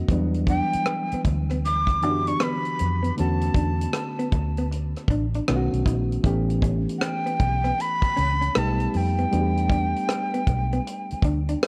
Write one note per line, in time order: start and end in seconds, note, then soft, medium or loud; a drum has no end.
0.00 0.13 F#4 medium
0.08 0.59 E2 medium
0.08 1.97 E3 medium
0.08 1.98 G3 medium
0.08 1.98 B3 medium
0.08 1.98 D4 medium
0.08 kick loud
0.08 closed hi-hat medium
0.13 1.99 F#3 medium
0.34 closed hi-hat soft
0.47 0.64 D4 medium
0.47 1.21 G5 loud
0.47 kick medium
0.47 closed hi-hat medium
0.73 muted fingered electric bass stroke soft
0.73 closed hi-hat medium
0.85 cross-stick medium
0.85 closed hi-hat medium
1.11 1.21 B3 medium
1.11 muted fingered electric bass stroke soft
1.11 closed hi-hat soft
1.24 2.03 D2 medium
1.24 muted hollow-body jazz guitar stroke soft
1.24 kick medium
1.24 closed hi-hat medium
1.50 1.59 B3 medium
1.50 cross-stick soft
1.50 closed hi-hat soft
1.65 2.29 D6 medium
1.65 muted hollow-body jazz guitar stroke soft
1.65 closed hi-hat medium
1.87 kick medium
1.87 cross-stick soft
1.87 closed hi-hat soft
2.02 2.33 F#2 medium
2.02 3.16 D3 soft
2.02 3.17 E3 soft
2.02 3.17 B3 soft
2.02 3.17 D4 soft
2.02 2.19 D4 medium
2.02 2.11 F#4 soft
2.02 closed hi-hat soft
2.10 3.21 G4 medium
2.27 2.36 D4 medium
2.27 2.45 C#6 loud
2.27 closed hi-hat soft
2.40 2.56 B3 medium
2.40 3.18 B5 medium
2.40 cross-stick loud
2.40 closed hi-hat medium
2.65 closed hi-hat soft
2.79 3.10 F2 medium
2.79 muted hollow-body jazz guitar stroke soft
2.79 closed hi-hat medium
3.03 3.11 B3 medium
3.03 closed hi-hat soft
3.17 3.49 E2 medium
3.17 5.43 D3 medium
3.17 5.43 A3 medium
3.17 5.44 B3 medium
3.17 5.44 C#4 medium
3.17 5.45 F#4 medium
3.17 4.67 A5 medium
3.17 closed hi-hat medium
3.41 closed hi-hat soft
3.55 3.86 E2 medium
3.55 3.70 D4 medium
3.55 kick medium
3.55 closed hi-hat medium
3.81 closed hi-hat medium
3.93 cross-stick medium
3.93 closed hi-hat medium
4.19 4.27 B3 medium
4.19 closed hi-hat soft
4.32 4.94 D2 medium
4.32 muted hollow-body jazz guitar stroke soft
4.32 kick medium
4.32 closed hi-hat medium
4.57 4.66 B3 medium
4.57 closed hi-hat soft
4.71 muted hollow-body jazz guitar stroke soft
4.71 closed hi-hat medium
4.96 cross-stick soft
4.96 closed hi-hat soft
5.08 5.39 A1 medium
5.08 5.25 D4 medium
5.08 kick medium
5.08 closed hi-hat soft
5.34 5.43 D4 medium
5.34 closed hi-hat soft
5.48 5.68 B1 medium
5.48 6.24 D#3 medium
5.48 6.23 A3 medium
5.48 6.24 B3 medium
5.48 6.25 C#4 medium
5.48 5.56 F4 medium
5.48 cross-stick loud
5.48 closed hi-hat medium
5.56 6.28 F#4 medium
5.73 5.83 B1 medium
5.73 closed hi-hat soft
5.86 6.17 A#1 medium
5.86 6.02 D#4 medium
5.86 kick medium
5.86 closed hi-hat medium
6.12 closed hi-hat soft
6.23 6.85 A1 medium
6.23 8.50 E3 medium
6.23 8.51 A3 medium
6.23 8.51 B3 medium
6.23 8.52 C#4 medium
6.23 8.52 G4 medium
6.23 kick medium
6.23 closed hi-hat medium
6.50 closed hi-hat soft
6.62 6.78 C#4 medium
6.62 kick medium
6.62 closed hi-hat medium
6.89 closed hi-hat medium
6.98 7.06 F#5 medium
6.98 cross-stick loud
6.98 closed hi-hat medium
7.04 7.83 G5 medium
7.26 7.34 B3 medium
7.26 closed hi-hat soft
7.40 7.71 B1 medium
7.40 muted hollow-body jazz guitar stroke soft
7.40 kick medium
7.40 closed hi-hat medium
7.64 7.73 B3 medium
7.64 cross-stick soft
7.64 closed hi-hat soft
7.78 8.60 B5 loud
7.78 muted hollow-body jazz guitar stroke soft
7.78 closed hi-hat medium
8.02 kick medium
8.02 cross-stick soft
8.02 closed hi-hat soft
8.16 8.48 C#2 medium
8.16 8.32 C#4 medium
8.16 closed hi-hat soft
8.41 8.50 C#4 medium
8.41 closed hi-hat soft
8.55 8.86 B1 medium
8.55 9.30 G3 medium
8.55 9.31 A3 medium
8.55 8.70 B3 medium
8.55 9.32 B3 medium
8.55 9.32 D#4 medium
8.55 9.33 G4 medium
8.55 8.98 A5 medium
8.55 cross-stick loud
8.55 closed hi-hat medium
8.80 closed hi-hat soft
8.94 9.25 F2 medium
8.94 11.26 G5 medium
8.94 muted hollow-body jazz guitar stroke soft
8.94 open hi-hat medium
9.19 9.27 B3 medium
9.19 closed hi-hat soft
9.31 9.93 E2 medium
9.31 11.67 G3 medium
9.31 11.67 A3 soft
9.31 11.67 B3 medium
9.31 11.67 D4 medium
9.31 9.41 F#4 soft
9.31 closed hi-hat medium
9.41 11.67 G4 medium
9.57 closed hi-hat soft
9.70 9.86 D4 medium
9.70 kick medium
9.70 closed hi-hat medium
9.96 closed hi-hat medium
10.09 cross-stick medium
10.09 closed hi-hat medium
10.34 10.42 B3 medium
10.34 closed hi-hat soft
10.47 10.78 B1 medium
10.47 muted hollow-body jazz guitar stroke soft
10.47 kick medium
10.47 closed hi-hat medium
10.72 10.81 B3 medium
10.72 closed hi-hat soft
10.87 muted hollow-body jazz guitar stroke soft
10.87 closed hi-hat medium
11.11 muted fingered electric bass stroke soft
11.11 closed hi-hat soft
11.23 11.54 D2 medium
11.23 11.40 D4 medium
11.23 kick medium
11.23 closed hi-hat medium
11.49 11.58 D4 medium
11.49 closed hi-hat soft
11.63 cross-stick loud
11.63 closed hi-hat medium